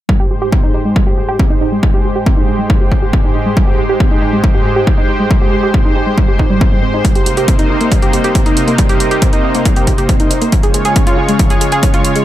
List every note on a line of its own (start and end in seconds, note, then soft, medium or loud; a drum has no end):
0.09 7.01 G#2 medium
0.09 0.15 G3 medium
0.09 7.01 G#3 medium
0.09 7.01 G4 medium
0.09 10.49 C5 medium
0.09 kick loud
0.20 0.26 G4 loud
0.31 0.34 G4 medium
0.42 0.48 G4 loud
0.52 0.59 C4 medium
0.52 kick loud
0.63 0.73 D#4 loud
0.74 0.84 D#4 medium
0.85 0.91 G#3 medium
0.96 kick loud
1.07 1.13 G4 loud
1.18 1.21 G4 medium
1.29 1.35 G4 medium
1.39 1.46 C4 medium
1.39 kick loud
1.50 1.60 D#4 loud
1.61 1.70 D#4 medium
1.72 1.78 G#3 medium
1.83 1.89 G3 medium
1.83 kick loud
1.94 2.00 G4 loud
2.05 2.08 G4 medium
2.16 2.22 G4 loud
2.26 2.33 C4 medium
2.26 kick loud
2.37 2.47 D#4 loud
2.48 2.57 D#4 medium
2.59 2.65 G#3 medium
2.70 2.76 G3 medium
2.70 kick loud
2.81 2.87 G4 loud
2.92 2.95 G4 medium
2.92 kick medium
3.02 3.09 G4 loud
3.13 3.20 C4 medium
3.13 kick loud
3.24 3.33 D#4 loud
3.35 3.44 D#4 medium
3.46 3.52 G#3 medium
3.57 3.63 G3 medium
3.57 kick loud
3.68 3.74 G4 loud
3.79 3.82 G4 medium
3.89 3.96 G4 medium
4.00 4.06 C4 medium
4.00 kick loud
4.11 4.20 D#4 loud
4.22 4.31 D#4 medium
4.33 4.39 G#3 medium
4.44 kick loud
4.55 4.61 G4 loud
4.65 4.69 G4 medium
4.76 4.82 G4 loud
4.87 4.93 C4 medium
4.87 kick loud
4.98 5.07 D#4 loud
5.09 5.18 D#4 medium
5.20 5.26 G#3 medium
5.31 5.37 G3 medium
5.31 kick loud
5.42 5.48 G4 loud
5.53 5.56 G4 medium
5.63 5.69 G4 loud
5.74 5.80 C4 medium
5.74 kick loud
5.85 5.94 D#4 loud
5.96 6.05 D#4 medium
6.07 6.13 G#3 medium
6.17 6.24 G3 medium
6.17 kick loud
6.28 6.35 G4 loud
6.39 6.43 D#4 medium
6.39 kick medium
6.50 6.59 G3 loud
6.61 6.65 C4 medium
6.61 kick loud
6.72 6.76 G3 medium
6.83 6.89 C4 medium
6.94 7.00 D#4 medium
7.05 10.49 C3 medium
7.05 7.11 G3 medium
7.05 10.49 A#3 medium
7.05 10.49 D#4 medium
7.05 kick loud
7.05 closed hi-hat medium
7.15 7.22 G4 loud
7.15 closed hi-hat soft
7.26 7.30 G4 medium
7.26 closed hi-hat medium
7.37 7.43 G4 loud
7.37 closed hi-hat soft
7.48 7.54 C4 medium
7.48 kick loud
7.48 closed hi-hat medium
7.59 7.68 D#4 loud
7.59 closed hi-hat soft
7.70 7.79 D#4 medium
7.81 7.87 A#3 medium
7.81 closed hi-hat soft
7.92 7.98 G3 medium
7.92 kick loud
7.92 closed hi-hat medium
8.02 8.09 G4 loud
8.02 closed hi-hat soft
8.13 8.17 G4 medium
8.13 closed hi-hat medium
8.24 8.30 G4 loud
8.24 closed hi-hat soft
8.35 8.41 C4 medium
8.35 kick loud
8.35 closed hi-hat medium
8.46 8.55 D#4 loud
8.46 closed hi-hat soft
8.57 8.66 D#4 medium
8.57 closed hi-hat medium
8.68 8.74 A#3 medium
8.68 closed hi-hat soft
8.78 8.85 G3 medium
8.78 kick loud
8.78 closed hi-hat medium
8.89 8.96 G4 loud
8.89 closed hi-hat soft
9.00 9.04 G4 medium
9.00 closed hi-hat medium
9.11 9.17 G4 loud
9.11 closed hi-hat soft
9.22 9.28 C4 medium
9.22 kick loud
9.22 closed hi-hat medium
9.33 9.42 D#4 loud
9.33 closed hi-hat soft
9.44 9.53 D#4 medium
9.55 9.61 A#3 medium
9.55 closed hi-hat soft
9.65 9.72 G3 medium
9.65 kick loud
9.65 closed hi-hat medium
9.76 9.83 G4 loud
9.76 closed hi-hat soft
9.87 9.91 G4 medium
9.87 kick medium
9.87 closed hi-hat medium
9.98 10.04 G4 medium
9.98 closed hi-hat soft
10.09 10.15 C4 medium
10.09 kick loud
10.09 closed hi-hat medium
10.20 10.29 D#4 loud
10.20 closed hi-hat soft
10.31 10.40 D#4 medium
10.31 closed hi-hat medium
10.42 10.48 A#3 medium
10.42 closed hi-hat soft
10.52 12.25 C#3 medium
10.52 10.59 F3 medium
10.52 12.25 G#3 medium
10.52 12.25 F4 medium
10.52 12.25 C#5 medium
10.52 kick loud
10.52 closed hi-hat medium
10.63 10.70 G#4 loud
10.63 closed hi-hat soft
10.74 10.78 G#4 medium
10.74 closed hi-hat medium
10.85 10.91 G#4 loud
10.85 closed hi-hat soft
10.96 11.02 C#4 medium
10.96 kick loud
10.96 closed hi-hat medium
11.07 11.16 F4 loud
11.07 closed hi-hat soft
11.18 11.27 F4 medium
11.29 11.35 G#3 medium
11.29 closed hi-hat soft
11.39 11.46 F3 medium
11.39 kick loud
11.39 closed hi-hat medium
11.50 11.57 G#4 loud
11.50 closed hi-hat soft
11.61 11.65 G#4 medium
11.61 closed hi-hat medium
11.72 11.78 G#4 loud
11.72 closed hi-hat soft
11.83 11.89 C#4 medium
11.83 kick loud
11.83 closed hi-hat medium
11.94 12.03 F4 loud
11.94 closed hi-hat soft
12.05 12.14 F4 medium
12.05 closed hi-hat medium
12.16 12.22 G#3 medium
12.16 closed hi-hat soft